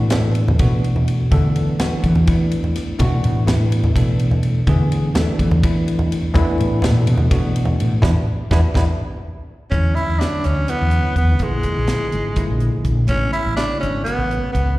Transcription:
Already playing: A2
0.10 E3 A3 B3 D4 A4, snare, ride, low conga
0.35 ride
0.48 high conga, low conga
0.59 B2 E3 A3 B3 D4 F#4, kick, ride
0.84 ride
0.96 low conga
1.08 ride
1.20 low conga
1.31 D3 E3 A3 B3 D4 A4, kick, ride, high conga, low conga
1.45 low conga
1.56 ride, low conga
1.68 low conga
1.79 E3 A3 B3 D4 F#4, snare, ride, low conga
2.03 E3, kick, ride, low conga
2.15 high conga, low conga
2.26 E3 A3 B3 D4 E4, kick, ride
2.51 ride
2.64 low conga
2.75 snare, ride, low conga
2.99 B2 E3 A3 B3 D4 F#4, kick, ride, high conga, low conga
3.24 A2, ride, low conga
3.46 E3 A3 B3 D4 E4, snare, ride, low conga
3.72 ride
3.84 high conga, low conga
3.95 B2 E3 A3 B3 D4 A4, kick, ride
4.19 ride
4.31 low conga
4.43 ride
4.55 low conga
4.67 D3 E3 A3 B3 D4 G#4, kick, ride, high conga, low conga
4.92 ride, low conga
5.14 E3 A3 B3 D4 A4, snare, ride, low conga
5.39 E3, kick, ride
5.51 high conga, low conga
5.63 E3 A3 B3 D4 E4, kick, ride
5.88 ride
5.99 low conga
6.12 ride
6.22 low conga
6.34 E3 A3 B3 D4 E4, kick, ride, high conga, low conga
6.58 A2, ride, low conga
6.82 A#2 E3 A3 B3 D4 A4, snare, ride, low conga
7.07 B2, ride
7.18 high conga, low conga
7.30 B2 E3 A3 B3 D4 F#4, kick, ride
7.56 ride
7.65 low conga
7.80 A2, ride
8.02 E2 B3 D4 E4, kick, snare, low conga
8.51 E2 B3 D4 E4, kick, snare, low conga
8.74 E2 B3 D4 E4, kick, snare, low conga
9.71 E2 D3 F#3 G#3 C#4 E4, kick, closed hi-hat
9.96 E4, closed hi-hat
10.08 E2
10.20 D3 F#3 G#3 C#4 D4 F#4, snare, closed hi-hat
10.33 muted fretless electric bass stroke
10.44 D2 C#4, snare, closed hi-hat
10.68 D3 F#3 G#3 B3 C#4 E4, closed hi-hat
10.81 E2
10.91 closed hi-hat
11.05 muted fretless electric bass stroke
11.16 E2 B3, kick, closed hi-hat
11.39 A#1 D3 F3 G#3, kick, closed hi-hat
11.43 G#3 A#3 E4
11.63 kick, closed hi-hat
11.78 A#1
11.87 D3 F3 G#3 A#3 E4, snare, closed hi-hat
12.03 muted fretless electric bass stroke
12.12 G#1, closed hi-hat
12.36 D3 F3 G#3 A#3 E4, kick, closed hi-hat
12.50 A#1
12.60 closed hi-hat
12.74 muted fretless electric bass stroke
12.84 A#1, kick, closed hi-hat
13.08 A1 C#3 G#3 A3 B3 C#4 E4, kick, closed hi-hat
13.32 E4, closed hi-hat
13.46 A1
13.56 C#3 G#3 A3 B3 D4 E4, snare, closed hi-hat
13.70 muted fretless electric bass stroke
13.80 G#1 C#4, closed hi-hat
14.04 C#3 G#3 A3 B3 F#4, closed hi-hat
14.18 A1
14.31 closed hi-hat
14.42 muted fretless electric bass stroke
14.52 C#2 B3, kick, closed hi-hat

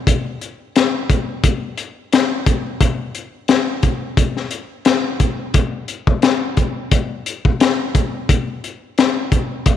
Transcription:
0.07 kick, closed hi-hat
0.41 closed hi-hat
0.76 snare, closed hi-hat
1.10 kick, closed hi-hat
1.44 kick, closed hi-hat
1.78 closed hi-hat
2.13 snare, closed hi-hat
2.46 kick, closed hi-hat
2.81 kick, closed hi-hat
3.15 closed hi-hat
3.48 snare, closed hi-hat
3.83 kick, closed hi-hat
4.17 kick, closed hi-hat
4.37 snare
4.51 closed hi-hat
4.85 snare, closed hi-hat
5.20 kick, closed hi-hat
5.54 kick, closed hi-hat
5.88 closed hi-hat
6.07 kick
6.22 snare, closed hi-hat
6.57 kick, closed hi-hat
6.91 kick, closed hi-hat
7.26 closed hi-hat
7.45 kick
7.60 snare, closed hi-hat
7.95 kick, closed hi-hat
8.29 kick, closed hi-hat
8.64 closed hi-hat
8.98 snare, closed hi-hat
9.32 kick, closed hi-hat
9.66 kick, closed hi-hat

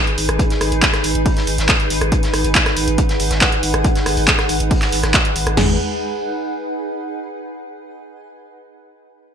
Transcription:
Already playing: D#4 G#4 B4 G#5
0.07 closed hi-hat
0.17 G#1, closed hi-hat, open hi-hat
0.29 G#1, cross-stick, closed hi-hat
0.39 kick, closed hi-hat
0.50 snare, closed hi-hat
0.61 G#1, cross-stick, closed hi-hat, open hi-hat
0.72 G#1, closed hi-hat
0.82 F#5, kick, snare, clap, closed hi-hat
0.94 cross-stick, snare, closed hi-hat
1.04 G#1, closed hi-hat, open hi-hat
1.15 G#1, closed hi-hat
1.26 kick, closed hi-hat, open hi-hat
1.37 snare, closed hi-hat
1.47 G#1, closed hi-hat, open hi-hat
1.58 G#1, snare, closed hi-hat
1.68 kick, snare, clap, closed hi-hat
1.80 closed hi-hat
1.90 G#1, closed hi-hat, open hi-hat
2.01 G#1, cross-stick, closed hi-hat
2.12 kick, closed hi-hat
2.23 snare, closed hi-hat
2.33 G#1, cross-stick, closed hi-hat, open hi-hat
2.45 G#1, closed hi-hat
2.55 kick, snare, clap, closed hi-hat
2.66 cross-stick, snare, closed hi-hat
2.76 G#1, closed hi-hat, open hi-hat
2.87 G#1, closed hi-hat
2.98 kick, closed hi-hat
3.09 snare, closed hi-hat
3.19 G#1, closed hi-hat, open hi-hat
3.31 G#1, snare, closed hi-hat
3.41 kick, snare, clap, closed hi-hat
3.52 closed hi-hat
3.63 G#1, closed hi-hat, open hi-hat
3.74 G#1, cross-stick, closed hi-hat
3.84 kick, closed hi-hat
3.96 snare, closed hi-hat
4.06 G#1, cross-stick, closed hi-hat, open hi-hat
4.17 G#1, closed hi-hat, open hi-hat
4.27 kick, snare, clap, closed hi-hat
4.39 cross-stick, snare, closed hi-hat
4.49 G#1, closed hi-hat, open hi-hat
4.60 G#1, closed hi-hat
4.71 kick, closed hi-hat, open hi-hat
4.82 snare, clap, closed hi-hat
4.92 G#1, closed hi-hat, open hi-hat
5.03 G#1, cross-stick, snare, closed hi-hat
5.14 kick, snare, clap, closed hi-hat
5.25 closed hi-hat
5.36 G#1, closed hi-hat, open hi-hat
5.47 G#1, cross-stick, closed hi-hat
5.57 G#1 G#3 D#4, snare, floor tom, crash
5.64 G#4
5.71 B4
5.77 G#5

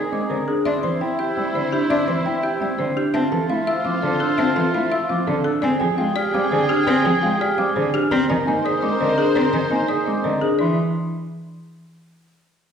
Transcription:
Already playing: C4 G#4 A#4 D5 D#6
0.12 G#3 C4 D#5 D6
0.30 D3 A#4 C5
0.48 D4 G#4 D#6
0.65 C4 D4 E4 C5 E5 C6
0.83 E3 C5 C6
1.01 C4 E4 G5
1.19 G4 E5 G6
1.37 G3 C4 G5 E6
1.55 D3 C5 D5
1.72 D4 G4 G6
1.90 C4 D4 E5 C6
2.07 E3 C5 C6
2.25 C4 E4 G5
2.43 G4 E5 G6
2.61 G3 C4 G5 E6
2.78 D3 C5 D5
2.96 D4 G4 G6
3.14 C4 F4 C5 E5 A5
3.32 E3 A4 A5
3.49 A3 E4 F5
3.67 F4 E5 E6
3.85 F3 C4 F5 D6
4.03 D3 A4 D5
4.20 D4 A4 E6
4.38 C4 E5 A5
4.56 E3 A4 A5
4.74 A3 E4 F5
4.92 F4 E5 E6
5.09 F3 C4 F5 D6
5.27 D3 A4 D5
5.44 D4 A4 E6
5.62 C4 G#4 D5 G5 G#5
5.80 F3 G#4 G5
5.98 G#3 F4 F5 G5
6.16 G4 D5 F6
6.34 G3 C4 F5 D6
6.52 D3 G#4 C5
6.69 D4 G4 F6
6.87 C4 D5 G#5
7.05 F3 G#4 G5
7.22 G#3 F4 F5 G5
7.40 G4 D5 F6
7.58 G3 C4 F5 D6
7.76 D3 G#4 C5
7.94 D4 G4 F6
8.11 C4 A#4 C5 D5 A#5
8.29 D#3 A#4 G#5
8.47 A#3 D#4 D#5 G#5
8.65 G#4 D5 D#6
8.82 G#3 C4 D#5 D6
9.00 D3 A#4 C5 D#5
9.18 D4 G#4 D#6
9.35 C4 D5 A#5
9.53 D#3 A#4 G#5
9.70 A#3 D#4 D#5 G#5
9.88 G#4 D5 D#6
10.06 G#3 C4 D#5 D6
10.24 D3 A#4 C5 D#5
10.41 D4 G#4 D#6
10.59 E3 E4 D5 C6

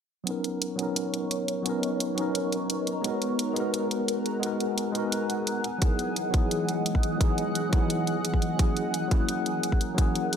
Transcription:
0.24 F#3 B3 C#4 D#4 A#4 C#5, closed hi-hat
0.29 D#4 A#4
0.44 closed hi-hat
0.62 closed hi-hat
0.76 F#3 B3 C#4, closed hi-hat
0.81 D#4 A#4
0.96 closed hi-hat
1.14 closed hi-hat
1.31 closed hi-hat
1.48 closed hi-hat
1.63 F#3 B3 C#4, closed hi-hat
1.68 D#4 A#4
1.83 closed hi-hat
2.00 closed hi-hat
2.15 F#3 B3 C#4, closed hi-hat
2.20 D#4 A#4
2.35 closed hi-hat
2.52 closed hi-hat
2.70 closed hi-hat
2.87 closed hi-hat
3.01 G#3 B3 D#4 G#4 F#5, closed hi-hat
3.06 F#4 A#4
3.22 closed hi-hat
3.39 closed hi-hat
3.53 G#3 B3 D#4, closed hi-hat
3.58 F#4 A#4
3.74 closed hi-hat
3.91 closed hi-hat
4.08 closed hi-hat
4.26 closed hi-hat
4.40 G#3 B3 D#4, closed hi-hat
4.45 F#4 A#4
4.60 closed hi-hat
4.78 closed hi-hat
4.92 G#3 B3 D#4, closed hi-hat
4.97 F#4 A#4
5.12 closed hi-hat
5.30 closed hi-hat
5.47 closed hi-hat
5.64 E3 G#3 D#5, closed hi-hat
5.78 F#3 B3 D#4, kick, closed hi-hat
5.84 E4 G#4
5.99 closed hi-hat
6.16 closed hi-hat
6.31 F#3 B3 D#4, kick, closed hi-hat
6.36 E4 G#4
6.51 closed hi-hat
6.69 closed hi-hat
6.86 closed hi-hat
6.95 kick
7.03 closed hi-hat
7.18 F#3 B3 D#4, kick, closed hi-hat
7.23 E4 G#4
7.38 closed hi-hat
7.55 closed hi-hat
7.69 F#3 B3 D#4, kick, closed hi-hat
7.74 E4 G#4
7.90 closed hi-hat
8.07 closed hi-hat
8.25 closed hi-hat
8.34 kick
8.42 closed hi-hat
8.56 F#3 A#3 C#4 A#4, kick, closed hi-hat
8.61 E4 G#4
8.77 closed hi-hat
8.94 closed hi-hat
9.08 F#3 A#3 C#4, kick, closed hi-hat
9.13 E4 G#4
9.29 closed hi-hat
9.46 closed hi-hat
9.63 closed hi-hat
9.72 kick
9.81 closed hi-hat
9.95 F#3 A#3 C#4, kick, closed hi-hat
10.00 E4 G#4
10.15 closed hi-hat
10.33 closed hi-hat

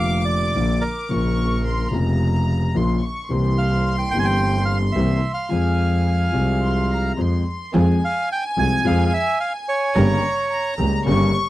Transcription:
Already playing: F1 F2 D3 F3 A#3 F4 F5 D6
0.25 D5
0.55 A#1 A#2 D3 F3 A#3 F4
0.81 A#4
1.09 A#1 A#2 C#3 F3 A#3 F4 C#6
1.65 C6
1.90 F1 F2 C#3 F3 A#3 F4 A#5
2.75 A#1 A#2 C#3 F3 A#3 F4 C6
3.02 C#6
3.29 C2 C3 E3 A#3 C4 C6
3.33 G4
3.58 F5
3.98 G5
4.11 G1 G2 E3 A#3 C4 G5
4.16 G4 G#5
4.25 G5
4.65 F5
4.92 C2 C3 E3 A#3 E5
4.96 C2 C4 G4
5.34 F5
5.50 F2 F3 G#3 C4 G#4 G#5
6.06 G#5
6.32 C2 C3 F3 G#3 C4 G#4
6.63 C6
6.92 A#5
7.17 F2 F3 G#3 C4 G#4 C6
7.74 F2 F3 G#3 C4 F4 G#4 G#5
8.05 F5
8.32 G5
8.57 C2 C3 F3 G#3 C4 F4 G#4 G#5
8.84 F2 F3 G#3 C4 F4 G#4 F5
9.06 F5
9.14 E5
9.40 F5
9.68 C#5
9.95 G1 G2 C#3 G3 A#3 C#4 G4 A#4 A#5
10.49 A#5
10.78 C#2 C#3 G3 A#3 C#4 G4 A#4
11.05 G1 G2 C#3 G3 A#3 C#4 G4 A#4 C#6

